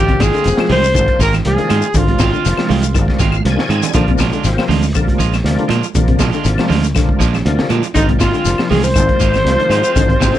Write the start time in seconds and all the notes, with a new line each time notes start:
Already playing: G#1 C3 D#3 F3 G#3 A#3 C4 D4 F4 G4
0.00 G4
0.08 C3, kick, closed hi-hat
0.20 G#1 D#3 G#3 C4 F4 G#4, kick, snare, closed hi-hat, high conga, claves, shekere
0.33 D3 G#3 C4 F4, snare, closed hi-hat, shekere
0.44 F1 C3 F3 A#3 C4, closed hi-hat, shekere
0.57 F3, snare, high conga, claves
0.69 C2 D#3 G#3 C4 F4 C5, open hi-hat, high conga, low conga, shekere
0.84 shekere
0.94 G#1 C3 D#3 F3 A#3 D4, kick, closed hi-hat, claves, shekere
1.08 kick, closed hi-hat
1.19 G#1 D#3 G#3 C4 F4 A#4, kick, snare, closed hi-hat, shekere
1.33 snare, closed hi-hat, low conga, claves, shekere
1.45 C2 C3 F3 A#3 D4 G#4, closed hi-hat, high conga
1.58 D#3, muted fingered electric bass stroke, closed hi-hat
1.69 G#2 D#3 G#3 C4 F4, closed hi-hat, high conga, claves, shekere
1.82 shekere
1.94 G#1 C3 D3 F3 A#3 D4 F4, kick, closed hi-hat, low conga, shekere
2.07 C3, kick, closed hi-hat, high conga
2.19 G#1 D#3 G#3 C4 F4, kick, snare, closed hi-hat, high conga, claves, shekere
2.32 D3 G#3 C4 F4, shekere
2.45 F1 C3 F3 A#3 D4, snare, closed hi-hat, shekere
2.57 F3, snare, closed hi-hat, high conga, claves
2.69 C2 D#3 G#3 C4 F4, snare, open hi-hat, high conga, low conga, shekere
2.83 closed hi-hat, shekere
2.94 G#1 C3 D#3 F3 A#3 D4, kick, closed hi-hat, claves, shekere
3.08 kick, snare, high conga
3.19 G#1 D#3 G#3 C4 F4 F5, kick, snare, closed hi-hat, high conga, shekere
3.32 high conga, claves, shekere
3.45 C2 C3 F3 A#3 D4 G#5, closed hi-hat, low conga
3.57 D#3, muted fingered electric bass stroke, snare
3.69 G#2 D#3 G#3 C4 F4, closed hi-hat, low conga, claves, shekere
3.83 closed hi-hat, low conga, shekere
3.93 A#1 C3 D3 F3 A#3 D4 F4, muted clean electric guitar stroke, kick, closed hi-hat, low conga, shekere
4.07 C3, kick, closed hi-hat, high conga
4.18 A#1 F3 G#3 D4 F4, kick, snare, closed hi-hat, high conga, claves, shekere
4.31 D3 G#3 D4 F4, closed hi-hat, shekere
4.44 G#1 C3 F3 A#3 C4, snare, closed hi-hat, shekere
4.58 F3, muted fingered electric bass stroke, snare, claves
4.68 D2 F3 G#3 D4 F4, open hi-hat, high conga, low conga, shekere
4.83 shekere
4.95 A#1 C3 D3 F3 A#3 D4, kick, closed hi-hat, claves, shekere
5.07 kick, closed hi-hat, high conga
5.18 A#1 F3 G#3 F4, muted clean electric guitar stroke, kick, closed hi-hat, shekere
5.33 snare, closed hi-hat, claves, shekere
5.44 D2 C3 F3 A#3 D4, snare, closed hi-hat, high conga
5.58 D3, closed hi-hat
5.68 A#2 F3 G#3 D4 F4, closed hi-hat, high conga, claves, shekere
5.83 shekere
5.95 A#1 C3 D3 F3 A#3 D4, kick, closed hi-hat, low conga, shekere
6.08 C3, kick, closed hi-hat
6.19 A#1 F3 G#3 D4 F4, kick, snare, closed hi-hat, high conga, claves, shekere
6.31 D3 G#3 D4 F4, snare, shekere
6.44 G#1 C3 F3 A#3 D4, closed hi-hat, shekere
6.58 F3, muted fingered electric bass stroke, snare, closed hi-hat, high conga, claves
6.68 D2 F3 G#3 D4 F4, snare, open hi-hat, high conga, low conga, shekere
6.84 closed hi-hat, shekere
6.95 A#1 C3 D3 F3 A#3 D4, kick, snare, closed hi-hat, claves, shekere
7.08 kick, high conga
7.19 A#1 F3 G#3 D4 F4, kick, snare, closed hi-hat, shekere
7.34 snare, low conga, claves, shekere
7.45 D2 C3 F3 A#3 D4, closed hi-hat, high conga
7.59 D3, muted fingered electric bass stroke, snare
7.70 A#2 F3 G#3 D4 F4, closed hi-hat, high conga, claves, shekere
7.83 closed hi-hat, shekere
7.94 G#1 C3 D3 D#3 F3 G#3 A#3 C4 D4 D#4 F4, kick, closed hi-hat, low conga, shekere
8.09 C3, kick, closed hi-hat, high conga
8.19 G#1 D#3 G#3 C4 F4, kick, snare, closed hi-hat, high conga, claves, shekere
8.33 D3 G#3 C4 F4, closed hi-hat, shekere
8.45 F1 C3 F3 A#3 D4, snare, closed hi-hat, shekere
8.58 F3, snare, claves
8.70 C2 D#3 G#3 C4 F4 G#4, snare, open hi-hat, high conga, low conga, shekere
8.83 C5, shekere
8.94 G#1 C3 D#3 F3 A#3 D4, kick, closed hi-hat, claves, shekere
9.09 kick, closed hi-hat, high conga
9.20 G#1 D#3 G#3 F4, muted clean electric guitar stroke, kick, snare, closed hi-hat, shekere
9.33 snare, closed hi-hat, low conga, claves, shekere
9.45 C2 C3 F3 A#3 D4, snare, closed hi-hat, high conga
9.58 D#3, muted fingered electric bass stroke, closed hi-hat
9.70 G#2 D#3 G#3 C4 F4, closed hi-hat, high conga, claves, shekere
9.83 G#3 C4 F4, shekere
9.96 G#1 C3 D3 F3 G#3 A#3 D4, kick, closed hi-hat, low conga, shekere
10.09 C3 C4, kick, closed hi-hat
10.20 G#1 D#3 G#3 C4 F4, kick, snare, closed hi-hat, high conga, claves, shekere
10.34 D3, shekere